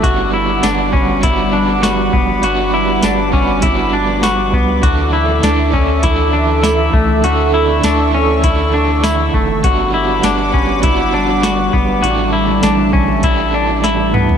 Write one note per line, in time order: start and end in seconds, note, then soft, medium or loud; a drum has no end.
0.00 0.61 G1 loud
0.00 2.31 D3 medium
0.00 0.61 G3 medium
0.00 4.79 G3 medium
0.00 0.63 B3 medium
0.00 0.33 F#4 medium
0.00 4.79 F#5 medium
0.00 4.79 B5 medium
0.00 7.19 D6 loud
0.00 kick loud
0.00 closed hi-hat medium
0.05 0.65 D4 medium
0.05 0.65 F#4 loud
0.34 0.64 E4 medium
0.62 2.10 G1 loud
0.62 1.20 G3 medium
0.62 1.23 B3 medium
0.62 0.92 D4 medium
0.62 1.27 D4 medium
0.62 snare loud
0.62 closed hi-hat medium
0.62 tambourine medium
0.68 1.26 F#4 medium
0.93 1.23 C#4 medium
0.93 kick loud
1.21 2.41 G3 medium
1.21 2.42 B3 loud
1.21 1.53 E4 medium
1.21 kick loud
1.21 closed hi-hat medium
1.27 2.44 D4 medium
1.27 2.45 F#4 loud
1.53 1.83 D4 medium
1.83 2.13 F#4 medium
1.83 snare loud
1.83 closed hi-hat medium
1.83 tambourine medium
2.13 2.42 F#1 medium
2.13 2.43 B3 medium
2.13 kick loud
2.42 3.00 G1 loud
2.42 3.33 G3 medium
2.42 3.33 B3 medium
2.42 3.34 D4 medium
2.42 2.73 F#4 loud
2.42 3.31 F#4 medium
2.42 closed hi-hat medium
2.74 3.04 E4 medium
3.03 4.55 G1 loud
3.03 3.33 D4 medium
3.03 snare loud
3.03 closed hi-hat medium
3.03 tambourine medium
3.32 3.63 C#4 medium
3.32 3.64 D4 soft
3.32 3.63 F#4 medium
3.32 kick medium
3.38 3.62 B3 soft
3.60 4.82 G3 medium
3.60 4.84 B3 medium
3.60 3.93 E4 medium
3.60 kick medium
3.60 closed hi-hat medium
3.66 4.85 D4 medium
3.66 4.86 F#4 medium
3.93 4.23 D4 medium
4.23 4.53 F#4 medium
4.23 snare loud
4.23 closed hi-hat medium
4.23 tambourine medium
4.53 4.82 C#2 loud
4.53 4.84 B3 medium
4.53 kick medium
4.82 5.40 D2 loud
4.82 5.44 D3 medium
4.82 5.40 E3 medium
4.82 5.42 A3 loud
4.82 5.44 D4 medium
4.82 5.13 F#4 medium
4.82 9.59 A4 medium
4.82 9.59 E5 medium
4.82 9.59 E6 medium
4.82 kick loud
4.82 closed hi-hat medium
4.86 5.45 A4 medium
5.13 5.43 E4 medium
5.41 6.89 D2 loud
5.41 5.72 E3 medium
5.41 5.73 A3 medium
5.41 5.73 D4 medium
5.41 snare loud
5.41 closed hi-hat medium
5.41 tambourine medium
5.45 5.74 D4 medium
5.45 5.70 A4 medium
5.72 6.04 C#4 medium
5.72 6.04 D4 soft
5.72 6.03 A4 medium
5.72 kick loud
5.78 6.04 A3 soft
6.03 7.22 E3 medium
6.03 7.23 A3 loud
6.03 6.34 E4 medium
6.03 kick loud
6.03 closed hi-hat medium
6.08 7.25 D4 loud
6.08 7.25 A4 medium
6.33 6.63 D4 medium
6.63 6.93 E4 medium
6.63 snare loud
6.63 closed hi-hat medium
6.63 tambourine medium
6.93 7.22 C#2 loud
6.93 7.23 A3 medium
6.93 kick loud
7.22 7.81 D2 medium
7.22 7.85 D3 medium
7.22 7.81 E3 medium
7.22 7.83 A3 medium
7.22 7.85 D4 medium
7.22 7.54 F#4 loud
7.22 7.85 A4 medium
7.22 9.61 C#6 loud
7.22 closed hi-hat medium
7.54 7.84 E4 medium
7.82 9.30 D2 loud
7.82 8.43 E3 medium
7.82 8.44 A3 medium
7.82 8.14 D4 medium
7.82 8.47 D4 medium
7.82 snare loud
7.82 closed hi-hat medium
7.82 tambourine medium
7.87 8.45 A4 medium
8.14 8.44 C#4 medium
8.41 11.91 D3 medium
8.41 9.63 E3 medium
8.41 8.74 E4 medium
8.41 kick medium
8.41 closed hi-hat medium
8.46 9.64 A3 medium
8.46 9.65 D4 loud
8.50 9.66 A4 loud
8.74 9.04 D4 medium
9.04 9.34 E4 medium
9.04 snare loud
9.04 closed hi-hat medium
9.04 tambourine medium
9.34 9.62 F#1 loud
9.34 9.64 A3 medium
9.34 kick medium
9.63 10.21 G1 loud
9.63 14.38 G3 medium
9.63 10.22 G3 medium
9.63 10.23 B3 medium
9.63 10.26 D4 medium
9.63 9.94 F#4 medium
9.63 12.01 F#5 medium
9.63 12.01 B5 medium
9.63 14.38 D6 loud
9.63 kick loud
9.63 closed hi-hat medium
9.67 10.25 F#4 medium
9.94 10.24 E4 medium
10.22 11.70 G1 loud
10.22 10.81 G3 medium
10.22 10.84 B3 medium
10.22 10.53 D4 medium
10.22 10.88 D4 medium
10.22 snare loud
10.22 closed hi-hat medium
10.22 tambourine medium
10.28 10.86 F#4 medium
10.54 10.84 C#4 medium
10.54 kick medium
10.82 12.04 G3 loud
10.82 12.04 B3 medium
10.82 11.14 E4 medium
10.82 kick loud
10.82 closed hi-hat medium
10.88 12.08 D4 medium
10.88 12.07 F#4 medium
11.14 11.44 D4 medium
11.43 11.73 F#4 loud
11.43 snare loud
11.43 closed hi-hat medium
11.43 tambourine medium
11.73 12.02 G1 loud
11.73 12.03 B3 medium
11.73 kick loud
12.01 12.61 A1 loud
12.01 13.19 A2 medium
12.01 13.27 D3 medium
12.01 12.32 F#4 loud
12.01 14.38 E5 medium
12.01 14.38 A5 medium
12.01 closed hi-hat medium
12.05 13.24 E3 medium
12.05 13.25 A3 medium
12.05 13.27 D4 medium
12.10 13.27 G4 loud
12.33 12.63 E4 medium
12.63 14.16 A1 loud
12.63 12.93 D4 medium
12.63 snare loud
12.63 closed hi-hat medium
12.63 tambourine medium
12.93 13.23 C#4 medium
12.93 kick loud
13.20 14.38 A2 medium
13.20 14.38 E3 medium
13.20 13.54 E4 medium
13.20 kick loud
13.20 closed hi-hat medium
13.26 14.38 A3 medium
13.26 14.38 D4 loud
13.26 14.38 G4 medium
13.54 13.84 D4 medium
13.84 14.14 E4 medium
13.84 snare medium
13.84 closed hi-hat medium
14.14 14.38 C#2 loud
14.14 14.38 B3 medium
14.14 mid tom medium
14.29 floor tom loud